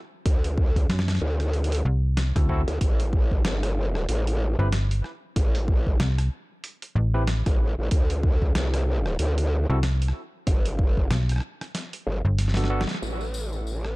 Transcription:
0.26 0.87 D2 loud
0.26 kick loud
0.26 closed hi-hat medium
0.44 closed hi-hat medium
0.58 kick loud
0.76 kick medium
0.76 closed hi-hat soft
0.90 1.19 F#2 loud
0.90 snare loud
0.90 closed hi-hat medium
0.99 snare medium
1.08 cross-stick medium
1.08 snare medium
1.08 closed hi-hat soft
1.10 closed hi-hat soft
1.15 snare medium
1.15 closed hi-hat soft
1.17 closed hi-hat soft
1.19 1.83 D2 loud
1.19 closed hi-hat soft
1.40 cross-stick soft
1.40 closed hi-hat soft
1.53 closed hi-hat soft
1.64 closed hi-hat soft
1.72 closed hi-hat medium
1.75 closed hi-hat medium
1.85 2.33 C2 medium
2.17 snare loud
2.17 closed hi-hat medium
2.36 2.65 D2 medium
2.36 2.47 C4 medium
2.36 2.47 E4 medium
2.36 2.47 F#4 medium
2.36 2.47 A4 medium
2.36 kick loud
2.36 cross-stick soft
2.36 closed hi-hat medium
2.49 2.61 C4 medium
2.49 2.60 E4 medium
2.49 2.60 F#4 medium
2.49 2.60 A4 loud
2.49 kick medium
2.68 2.79 D2 medium
2.68 closed hi-hat soft
2.81 3.43 A1 loud
2.81 kick loud
2.81 closed hi-hat medium
3.00 closed hi-hat soft
3.13 kick loud
3.31 kick medium
3.45 4.06 G1 medium
3.45 snare loud
3.45 closed hi-hat medium
3.63 cross-stick medium
3.63 closed hi-hat medium
3.95 cross-stick soft
4.09 4.56 A1 loud
4.09 closed hi-hat medium
4.27 closed hi-hat soft
4.59 5.02 G1 loud
4.59 4.67 C4 medium
4.59 4.67 E4 medium
4.59 4.67 G4 medium
4.59 4.67 B4 loud
4.72 snare loud
4.72 closed hi-hat medium
4.91 closed hi-hat medium
5.04 cross-stick soft
5.36 5.98 A1 loud
5.36 kick loud
5.36 closed hi-hat medium
5.55 closed hi-hat medium
5.68 kick loud
5.87 kick medium
6.00 6.30 C2 medium
6.00 snare loud
6.00 closed hi-hat medium
6.18 cross-stick medium
6.18 closed hi-hat medium
6.64 closed hi-hat medium
6.82 closed hi-hat soft
6.95 7.43 A1 loud
7.14 7.23 C4 medium
7.14 7.23 E4 medium
7.14 7.23 G4 medium
7.14 7.23 B4 loud
7.27 snare loud
7.27 closed hi-hat medium
7.46 7.75 A1 loud
7.46 kick loud
7.46 cross-stick soft
7.46 closed hi-hat soft
7.78 7.89 A1 loud
7.91 8.53 D2 loud
7.91 kick loud
7.91 closed hi-hat medium
8.10 closed hi-hat soft
8.23 kick loud
8.42 kick medium
8.55 9.17 C2 medium
8.55 snare loud
8.55 closed hi-hat medium
8.74 cross-stick medium
8.74 closed hi-hat medium
9.06 cross-stick medium
9.19 9.67 D2 medium
9.19 closed hi-hat medium
9.38 closed hi-hat soft
9.69 10.13 C2 medium
9.69 9.78 C4 medium
9.69 9.78 E4 medium
9.69 9.78 F#4 medium
9.69 9.78 A4 loud
9.83 snare loud
9.83 closed hi-hat medium
10.02 closed hi-hat medium
10.08 cross-stick soft
10.47 11.09 G1 loud
10.47 kick loud
10.47 closed hi-hat medium
10.65 closed hi-hat medium
10.79 kick loud
10.97 kick medium
11.11 11.40 B1 loud
11.11 snare loud
11.11 closed hi-hat medium
11.29 cross-stick soft
11.29 closed hi-hat medium
11.32 cross-stick soft
11.36 cross-stick soft
11.38 cross-stick soft
11.40 cross-stick soft
11.61 cross-stick medium
11.61 closed hi-hat soft
11.75 snare medium
11.75 closed hi-hat medium
11.93 closed hi-hat medium
12.07 12.22 G1 loud
12.25 12.86 G1 loud
12.38 snare soft
12.38 closed hi-hat medium
12.48 snare soft
12.54 12.68 B3 medium
12.54 12.68 D4 medium
12.54 12.68 F#4 medium
12.54 12.68 A4 medium
12.54 snare medium
12.57 snare soft
12.57 closed hi-hat medium
12.64 snare medium
12.70 12.82 B3 medium
12.70 12.82 D4 medium
12.70 12.82 F#4 medium
12.70 12.82 A4 loud
12.81 snare medium
12.87 snare medium
12.87 closed hi-hat soft
12.91 snare medium
12.94 snare medium
13.02 13.96 A1 medium
13.02 tambourine soft
13.21 tambourine soft
13.34 tambourine medium
13.53 tambourine soft
13.67 tambourine soft
13.85 cross-stick soft

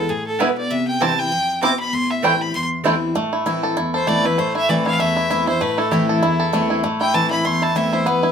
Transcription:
0.00 0.10 A4 medium
0.09 0.38 A2 medium
0.09 0.26 G#4 medium
0.27 0.42 A4 medium
0.39 0.69 B2 medium
0.39 0.49 B3 medium
0.39 0.48 B3 medium
0.39 0.50 E4 medium
0.39 0.48 E4 medium
0.39 0.50 B4 medium
0.39 0.57 B4 medium
0.39 0.50 G#5 medium
0.57 0.72 D5 medium
0.71 1.29 C3 medium
0.71 0.87 E5 medium
0.88 1.03 G5 medium
1.00 1.30 E3 medium
1.00 1.30 G3 medium
1.00 1.11 C4 medium
1.00 1.09 C4 medium
1.00 1.31 C4 medium
1.00 1.11 E4 medium
1.00 1.09 E4 medium
1.00 1.31 E4 medium
1.00 1.11 C5 medium
1.00 1.11 G5 loud
1.00 1.20 A5 medium
1.19 1.62 G5 loud
1.32 1.61 F2 medium
1.62 1.92 B2 medium
1.62 1.72 C4 medium
1.62 1.70 C4 medium
1.62 1.72 E4 medium
1.62 1.70 E4 medium
1.62 1.73 C5 medium
1.62 1.73 G5 medium
1.62 1.78 D6 medium
1.80 1.95 B5 medium
1.93 2.52 A2 medium
1.93 2.12 C6 medium
2.10 2.26 E5 medium
2.22 2.53 E3 medium
2.22 2.53 G3 medium
2.22 2.33 A3 medium
2.22 2.31 A3 medium
2.22 2.53 C4 medium
2.22 2.33 E4 medium
2.22 2.32 E4 medium
2.22 2.53 E4 medium
2.22 2.34 C5 medium
2.22 2.34 G5 loud
2.22 2.42 G5 medium
2.41 2.54 B5 medium
2.54 3.13 E2 medium
2.54 2.65 C6 medium
2.84 3.14 E3 medium
2.84 3.14 G3 medium
2.84 2.94 A3 medium
2.84 2.93 A3 medium
2.84 3.14 C4 medium
2.84 2.95 E4 medium
2.84 3.15 E4 medium
2.84 2.93 E4 medium
2.84 2.95 C5 medium
2.84 2.95 G5 medium
3.15 3.74 A2 medium
3.15 4.07 A3 medium
3.33 3.46 E4 medium
3.46 3.75 E3 medium
3.46 3.76 A3 loud
3.46 3.76 C4 medium
3.46 3.77 E4 medium
3.46 3.76 E4 medium
3.63 3.94 A4 medium
3.77 4.35 E2 medium
3.77 4.25 E4 medium
3.94 5.34 A4 medium
3.94 4.09 C5 medium
4.07 4.24 E3 medium
4.07 4.38 A3 medium
4.07 4.24 A3 medium
4.07 4.24 C4 medium
4.07 4.24 E4 medium
4.07 4.27 D5 medium
4.25 4.38 C4 soft
4.25 4.55 E4 medium
4.25 4.38 E4 medium
4.25 4.40 B4 medium
4.38 4.97 A2 medium
4.38 4.99 A3 medium
4.38 4.55 C5 medium
4.55 4.86 E4 medium
4.55 4.71 E5 loud
4.69 4.98 E3 medium
4.69 6.09 E3 medium
4.69 4.99 A3 medium
4.69 4.99 C4 loud
4.69 4.99 E4 medium
4.69 4.86 D5 medium
4.86 5.16 E4 medium
4.86 5.01 F5 loud
4.99 5.58 E2 medium
4.99 5.61 A3 medium
4.99 5.47 E5 medium
5.16 5.30 E4 medium
5.30 5.47 E3 medium
5.30 5.47 A3 medium
5.30 5.47 C4 medium
5.30 5.47 E4 medium
5.30 5.46 E4 loud
5.47 5.61 C4 medium
5.47 5.78 E4 medium
5.47 5.60 E4 medium
5.47 5.63 C5 medium
5.61 6.19 A2 medium
5.61 6.53 A3 medium
5.61 5.79 B4 medium
5.78 5.92 E4 medium
5.78 5.93 A4 medium
5.91 6.21 E3 medium
5.91 6.21 A3 medium
5.91 6.21 C4 medium
5.91 6.22 E4 medium
5.91 6.21 E4 loud
5.91 6.08 G4 medium
6.08 6.79 E4 medium
6.08 6.38 A4 medium
6.22 6.81 E2 medium
6.22 6.70 E4 medium
6.40 6.81 A4 medium
6.53 6.82 E3 medium
6.53 6.83 A3 medium
6.53 6.82 A3 medium
6.53 6.83 C4 medium
6.53 6.83 E4 medium
6.70 7.01 E4 medium
6.84 7.42 A2 medium
6.84 7.28 A3 medium
7.00 7.31 E4 medium
7.00 7.16 G5 medium
7.14 7.43 E3 medium
7.14 8.32 E3 medium
7.14 7.43 A3 medium
7.14 7.44 C4 medium
7.14 7.44 E4 loud
7.14 7.30 A5 loud
7.30 7.62 E4 medium
7.30 7.46 B5 loud
7.45 8.03 E2 medium
7.45 7.89 A3 medium
7.45 7.64 C6 medium
7.62 7.76 E4 medium
7.62 7.77 A5 medium
7.75 8.04 E3 medium
7.75 8.05 A3 medium
7.75 8.05 C4 loud
7.75 7.93 E4 medium
7.75 8.05 E4 loud
7.75 7.95 E5 medium
7.93 8.23 E4 medium
7.93 8.08 C5 medium
8.06 8.32 E2 medium
8.06 8.32 B3 medium
8.06 8.32 B4 medium
8.23 8.32 E4 medium

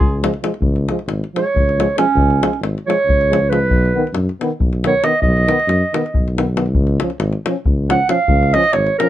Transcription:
0.00 0.33 C#2 medium
0.00 0.39 F4 medium
0.00 0.39 G#4 loud
0.00 davul low medium
0.23 0.31 F3 medium
0.23 0.31 G#3 medium
0.23 davul high medium
0.34 davul high soft
0.43 0.51 F3 soft
0.43 0.51 G#3 medium
0.43 davul high medium
0.54 davul high soft
0.61 0.87 C#2 medium
0.61 davul low medium
0.76 davul high soft
0.89 0.98 F3 soft
0.89 0.97 G#3 medium
0.89 davul high medium
0.99 davul high soft
1.07 1.21 G#1 medium
1.07 davul high medium
1.24 davul high soft
1.35 1.43 F3 soft
1.35 1.45 G#3 soft
1.35 1.94 C#5 medium
1.35 davul high medium
1.55 1.89 C#2 medium
1.55 davul low medium
1.69 davul high soft
1.79 1.87 F3 medium
1.79 1.87 G#3 medium
1.79 davul high medium
1.97 2.06 F3 medium
1.97 2.05 G#3 medium
1.97 2.59 C#4 medium
1.97 davul high medium
2.15 2.41 C#2 loud
2.15 davul low medium
2.30 davul high soft
2.42 2.50 F3 medium
2.42 2.51 G#3 medium
2.42 davul high medium
2.53 davul high soft
2.60 2.75 G#1 medium
2.60 davul high medium
2.78 davul high soft
2.86 2.95 F3 medium
2.86 2.96 G#3 medium
2.86 3.50 C#5 medium
2.86 davul high medium
3.05 3.69 C#2 medium
3.09 davul low medium
3.21 davul high soft
3.31 3.39 F3 medium
3.31 3.38 G#3 medium
3.31 davul high medium
3.49 3.58 F3 medium
3.49 3.59 G#3 medium
3.49 4.15 B4 medium
3.49 davul high medium
3.67 3.93 B1 loud
3.67 davul low medium
3.85 davul high soft
3.94 4.04 D#3 medium
3.94 4.03 B3 medium
4.07 davul high soft
4.13 4.28 F#2 medium
4.13 davul high medium
4.29 davul high soft
4.41 4.50 D#3 medium
4.41 4.49 B3 medium
4.41 davul high medium
4.60 4.94 B1 medium
4.60 davul low medium
4.73 davul high soft
4.84 4.92 D#3 medium
4.84 4.93 B3 medium
4.84 5.06 C#5 medium
4.84 davul high medium
5.04 5.11 D#3 medium
5.04 5.13 B3 medium
5.04 5.21 D#5 medium
5.04 davul high medium
5.22 5.48 B1 loud
5.22 6.33 D#5 medium
5.22 davul low medium
5.37 davul high soft
5.47 5.55 D#3 medium
5.47 5.57 B3 medium
5.47 davul high medium
5.60 davul high soft
5.67 5.82 F#2 medium
5.67 davul high medium
5.93 6.02 D#3 medium
5.93 6.02 B3 medium
5.93 davul high medium
6.06 davul high soft
6.14 6.74 B1 medium
6.14 davul low medium
6.28 davul high soft
6.36 6.44 D#3 medium
6.36 6.45 B3 medium
6.36 davul high medium
6.55 6.63 D#3 soft
6.55 6.64 B3 medium
6.55 davul high medium
6.66 davul high soft
6.73 6.99 C#2 loud
6.73 davul low medium
6.87 davul high soft
7.00 7.10 F3 medium
7.00 7.10 C#4 soft
7.00 davul high medium
7.10 davul high soft
7.19 7.34 G#1 medium
7.19 davul high medium
7.33 davul high soft
7.46 7.54 F3 medium
7.46 7.56 C#4 medium
7.46 davul high medium
7.66 8.00 C#2 medium
7.66 davul low medium
7.90 7.98 F3 medium
7.90 7.98 C#4 soft
7.90 8.08 F#5 medium
7.90 davul high medium
8.09 8.18 F3 medium
8.09 8.17 C#4 medium
8.09 8.55 F5 medium
8.09 davul high medium
8.28 8.54 C#2 medium
8.28 davul low medium
8.43 davul high soft
8.53 8.64 F3 medium
8.53 8.62 C#4 medium
8.53 8.74 D#5 loud
8.53 davul high medium
8.64 davul high soft
8.73 8.89 G#1 medium
8.73 8.98 C#5 medium
8.73 davul high medium
8.87 davul high soft
8.98 9.09 F3 medium
8.98 9.08 C#4 medium
8.98 9.09 A#4 medium
8.98 davul high medium

